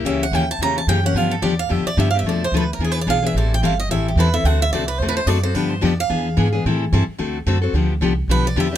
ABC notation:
X:1
M:4/4
L:1/8
Q:"Swing" 1/4=219
K:Gmix
V:1 name="Steel-string acoustic guitar"
e ^f g a ^a =a g f | f A d f e d (3e f e | d c B _B (3^G =B d f e | d g f _e =e G B e |
^f e d B (3c B c d c | B c d f4- f | z8 | z4 B d e z |]
V:2 name="Steel-string acoustic guitar"
[^C,E,^A,^CG] z [C,E,A,CG] z [C,E,A,CG] z [C,E,A,CG] [A,CG] | [D,F,B,DG] z [D,F,B,DG] z [D,F,B,DG] z [D,F,B,DG] [B,DG] | [B,,F,A,DA] z [B,,F,A,DA] z [E,B,D^G] z [E,B,DG] [B,DG] | [E,G,CEA] z [E,G,CEA] z [E,G,CEA] z [E,G,CEA] [CEA] |
[D,A,C^FA] z [D,A,CFA] z [D,A,CFA] z [D,A,CFA] [CFA] | [D,F,B,DG] z [D,F,B,DG] z [E,B,D^G] z [E,B,DG] [B,DG] | [E,G,CEA] z [E,G,CEA] z [D,A,C^FA] z [D,A,CFA] [CFA] | [D,F,B,DG] z [D,F,B,DG] z [D,F,B,DG] z [D,F,B,DG] [B,DG] |]
V:3 name="Upright bass" clef=bass
^C,,2 _E,,2 =E,,2 ^F,,2 | G,,2 E,,2 F,, z G,,2 | F,,2 D,,2 E,,2 B,,,2 | A,,,2 G,,,2 A,,,2 E,,2 |
D,,2 C,,2 E,,2 ^F,,2 | G,,2 F,,2 E,,2 ^G,,2 | A,,2 G,, z D,,2 ^F,,2 | D,,2 C,,2 B,,,2 E,,2 |]